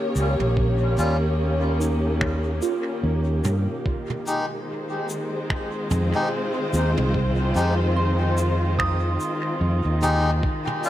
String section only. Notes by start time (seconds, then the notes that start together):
Already playing: D#3 A#3 C#4 G4 C#5
3.86 D#3
4.22 G#3
4.57 C5
5.06 C4
5.38 F4
10.74 A#3
10.78 G4